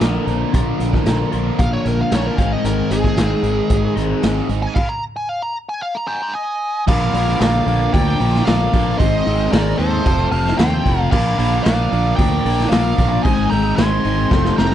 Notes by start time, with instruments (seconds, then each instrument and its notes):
0.00 fingered electric bass A#1, overdriven electric guitar A#2 D3 F3 A#3 D4 F4 A#4, snare, closed hi-hat
0.26 fingered electric bass A#1, overdriven electric guitar F3 A#3 D4 A#4, closed hi-hat
0.53 fingered electric bass A#1, overdriven electric guitar A#2 D3 F3 A#3 D4 F4 A#4, kick, closed hi-hat
0.80 fingered electric bass A#1, closed hi-hat
0.93 kick, snare
1.06 fingered electric bass A#1, overdriven electric guitar A#2 D3 F3 A#3 D4 A#4, snare, closed hi-hat
1.32 fingered electric bass A#1, overdriven electric guitar A#2 D3 F3 A#3 D4 F4 A#4, closed hi-hat
1.59 fingered electric bass A#1, lead electric guitar F5, kick, closed hi-hat
1.73 lead electric guitar C#5
1.85 fingered electric bass A#1, lead electric guitar A#4, closed hi-hat
2.01 lead electric guitar F5
2.11 fingered electric bass A#1, overdriven electric guitar A#2 D3 F3 A#3 D4 F4 A#4, snare, closed hi-hat
2.15 lead electric guitar C#5
2.27 lead electric guitar A#4
2.37 fingered electric bass G#1, overdriven electric guitar G#2 D#3 G#3 C4 D#4 G#4, lead electric guitar F5, kick, closed hi-hat
2.53 lead electric guitar D#5
2.64 fingered electric bass G#1, overdriven electric guitar G#2 D#3 G#3 C4 D#4 G#4, lead electric guitar A#4, closed hi-hat
2.90 fingered electric bass G#1, lead electric guitar G#4, closed hi-hat
3.04 kick, snare
3.16 fingered electric bass G#1, overdriven electric guitar G#2 D#3 G#3 C4 D#4 G#4, snare, closed hi-hat
3.43 fingered electric bass G#1, overdriven electric guitar G#3 C4 D#4 G#4, closed hi-hat
3.70 fingered electric bass G#1, kick, closed hi-hat
3.95 fingered electric bass G#1, overdriven electric guitar G#2 D#3 G#3 C4 D#4, closed hi-hat
4.22 fingered electric bass G#1, overdriven electric guitar G#3 C4 D#4 G#4, snare, closed hi-hat
4.37 snare
4.49 fingered electric bass G#1, overdriven electric guitar G#3 C4 D#4 G#4, closed hi-hat
4.62 lead electric guitar G#5
4.75 lead electric guitar F5, kick, crash
4.89 lead electric guitar A#5
5.16 lead electric guitar G#5
5.29 lead electric guitar F5
5.42 lead electric guitar A#5
5.69 lead electric guitar G#5
5.82 lead electric guitar F5
5.95 lead electric guitar A#5
6.07 lead electric guitar G5 G#5 A#5
6.34 lead electric guitar D#5 G#5
6.87 fingered electric bass A#1, overdriven electric guitar A#2 D3 F3 A#3 D4 F4 A#4, lead electric guitar D5 F5, kick, crash
7.13 fingered electric bass A#1, overdriven electric guitar A#2 D3 F3 A#3 D4 F4 A#4, open hi-hat
7.40 fingered electric bass A#1, overdriven electric guitar A#2 D3 F3 A#3 D4 F4 A#4, lead electric guitar D5 F5, snare, open hi-hat
7.66 fingered electric bass A#1, overdriven electric guitar A#2 D3 F3 A#3 D4 F4 A#4, open hi-hat
7.92 fingered electric bass D2, overdriven electric guitar A#2 D3 F3 A#3 D4 F4 A#4, lead electric guitar D5 G5, kick, open hi-hat
8.19 fingered electric bass A#1, overdriven electric guitar A#2 D3 F3 A#3 D4 F4 A#4, open hi-hat
8.35 snare
8.45 fingered electric bass A#1, overdriven electric guitar A#2 D3 F3 A#3 D4 F4 A#4, lead electric guitar D5 F5, snare, open hi-hat
8.72 fingered electric bass A#1, overdriven electric guitar A#2 D3 F3 A#3 D4 F4 A#4, kick, open hi-hat
8.98 fingered electric bass G#1, overdriven electric guitar G#2 D#3 G#3 C4 D#4 G#4, lead electric guitar C5 D#5, kick, open hi-hat
9.25 fingered electric bass G#1, overdriven electric guitar G#2 D#3 G#3 C4 D#4 G#4, open hi-hat
9.52 fingered electric bass G#1, overdriven electric guitar G#2 D#3 G#3 C4 D#4 G#4, lead electric guitar A#4 D5, snare, open hi-hat
9.78 fingered electric bass D#2, overdriven electric guitar G#2 D#3 G#3 C4 D#4 G#4, lead electric guitar A4 C5, open hi-hat
10.05 fingered electric bass F1, overdriven electric guitar F2 C3 F3 A3 C4 F4 A4, kick, open hi-hat
10.31 fingered electric bass F1, overdriven electric guitar F2 C3 F3 A3 C4 F4 A4, lead electric guitar F5 A5, open hi-hat
10.46 snare
10.57 fingered electric bass D#2, overdriven electric guitar F2 C3 F3 A3 C4 F4 A4, lead electric guitar C5 G5, snare, open hi-hat
10.85 fingered electric bass F1, overdriven electric guitar F2 C3 F3 A3 C4 F4 A4, kick, open hi-hat
11.11 fingered electric bass A#1, overdriven electric guitar A#2 D3 F3 A#3 D4 A#4, lead electric guitar D5 F5, kick, crash
11.38 fingered electric bass A#1, overdriven electric guitar A#2 D3 F3 A#3 D4 A#4, open hi-hat
11.64 fingered electric bass A#1, overdriven electric guitar A#2 D3 F3 A#3 D4 A#4, lead electric guitar D5 F5, snare, open hi-hat
11.91 fingered electric bass A#1, overdriven electric guitar A#2 D3 F3 A#3 D4 A#4, open hi-hat
12.16 fingered electric bass D2, overdriven electric guitar A#2 D3 F3 A#3, lead electric guitar D5 G5, kick, open hi-hat
12.20 overdriven electric guitar D4 A#4
12.45 fingered electric bass A#1, overdriven electric guitar A#2 D3 F3 A#3 D4 A#4, open hi-hat
12.59 snare
12.69 fingered electric bass A#1, overdriven electric guitar A#2 D3 F3, lead electric guitar D5 F5, snare, open hi-hat
12.74 overdriven electric guitar A#3 D4 A#4
12.98 fingered electric bass A#1, overdriven electric guitar A#2 D3 F3 A#3 D4 A#4, kick, open hi-hat
13.09 lead electric guitar D5 F5
13.23 fingered electric bass G#1, overdriven electric guitar G#2 D#3 G#3 C4 D#4 G#4, lead electric guitar D#5 G#5, kick, open hi-hat
13.50 fingered electric bass G#1, overdriven electric guitar G#2 D#3 G#3 C4 D#4 G#4, lead electric guitar G5 A#5, open hi-hat
13.76 fingered electric bass G#1, overdriven electric guitar G#2 D#3 G#3 C4 D#4, lead electric guitar G#5 C6, snare, open hi-hat
13.80 overdriven electric guitar G#4
14.04 fingered electric bass G#1, overdriven electric guitar G#2 D#3 G#3 C4 D#4 G#4, open hi-hat
14.31 fingered electric bass F1, overdriven electric guitar F2 C3 F3 A3 C4 F4 A4, kick, snare
14.45 snare
14.56 fingered electric bass F1, overdriven electric guitar F2 C3 F3 A3 C4 F4 A4, lead electric guitar G5 A#5, snare